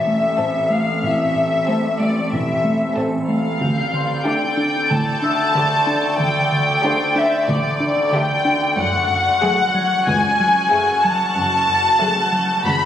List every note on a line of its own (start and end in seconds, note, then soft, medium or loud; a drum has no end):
0.00 0.26 E1 soft
0.00 3.57 A1 medium
0.00 0.26 E2 soft
0.00 3.57 C4 soft
0.00 3.57 A4 soft
0.00 2.35 B4 soft
0.00 0.70 E5 soft
0.00 2.36 B5 soft
0.07 0.26 A3 soft
0.38 0.58 A2 soft
0.38 0.86 C4 soft
0.38 0.86 A4 soft
0.70 0.90 A3 soft
0.70 1.03 F5 soft
1.03 1.55 A1 soft
1.03 1.22 A2 medium
1.03 1.54 A2 soft
1.03 2.01 E5 soft
1.35 1.55 A2 soft
1.67 1.87 A3 soft
1.67 2.15 C4 soft
1.67 2.16 A4 soft
2.00 2.19 A3 soft
2.00 2.32 D5 soft
2.32 2.83 E1 soft
2.32 2.83 E2 soft
2.32 2.52 A2 medium
2.32 2.96 E5 soft
2.64 2.84 A3 soft
2.96 3.16 A2 soft
2.96 3.45 C4 soft
2.96 3.44 A4 soft
3.28 3.48 A3 soft
3.28 4.22 F5 soft
3.60 4.12 D2 soft
3.60 8.78 D2 medium
3.60 3.81 D3 medium
3.60 8.73 A4 soft
3.60 8.77 D5 soft
3.60 8.77 G5 soft
3.60 8.41 G6 soft
3.60 taiko soft
3.93 4.13 D3 soft
3.93 6.84 C6 soft
4.25 4.74 A3 soft
4.25 4.45 D4 soft
4.25 4.74 G4 soft
4.25 4.90 G5 soft
4.25 8.41 A6 soft
4.57 4.77 D4 soft
4.90 5.41 A1 soft
4.90 5.41 A2 soft
4.90 5.10 D3 medium
4.90 6.19 A5 medium
5.22 5.42 D4 soft
5.22 8.80 E5 soft
5.22 8.80 E6 soft
5.55 5.74 D3 soft
5.55 6.03 A3 soft
5.55 6.03 G4 soft
5.87 6.06 D4 soft
6.18 6.70 D2 soft
6.18 6.71 D2 soft
6.18 6.39 D3 medium
6.18 7.14 G5 medium
6.52 6.71 D3 soft
6.83 7.31 A3 soft
6.83 7.04 D4 soft
6.83 7.32 G4 soft
6.83 8.80 C5 soft
6.83 8.80 C6 soft
7.16 7.35 D4 medium
7.16 7.49 E5 soft
7.48 8.00 A1 medium
7.48 7.99 A2 medium
7.48 7.68 D3 medium
7.48 8.13 D5 medium
7.48 9.43 D6 soft
7.80 8.00 D4 soft
8.12 8.32 D3 medium
8.12 8.61 A3 soft
8.12 8.61 G4 soft
8.12 8.78 G5 medium
8.45 8.64 D4 medium
8.77 9.28 F#1 medium
8.77 12.85 F#1 medium
8.77 8.97 F#2 medium
8.77 9.29 F#2 medium
8.77 12.85 C#4 soft
8.77 12.85 F#4 soft
8.77 12.85 F#5 soft
8.77 10.05 F#5 medium
8.77 12.85 C#6 soft
8.77 taiko soft
9.10 9.29 F#2 soft
9.41 9.62 F#3 soft
9.41 9.90 A3 soft
9.41 9.90 G#4 medium
9.41 12.54 F#6 soft
9.74 9.94 F#3 soft
9.74 12.85 G#6 soft
10.06 10.58 C#2 medium
10.06 10.26 F#2 medium
10.06 11.01 G#5 medium
10.40 10.59 F#3 medium
10.70 10.91 F#2 soft
10.70 11.19 A3 soft
10.70 11.19 G#4 soft
11.03 11.23 F#3 medium
11.03 12.64 A5 medium
11.36 11.87 F#1 medium
11.36 11.87 F#2 medium
11.36 11.55 F#2 medium
11.69 11.88 F#2 soft
11.99 12.20 F#3 soft
11.99 12.48 A3 soft
11.99 12.48 G#4 soft
12.32 12.52 F#3 medium
12.54 12.85 G6 soft
12.64 12.85 C#2 medium
12.64 12.84 F#2 medium
12.64 12.85 B5 medium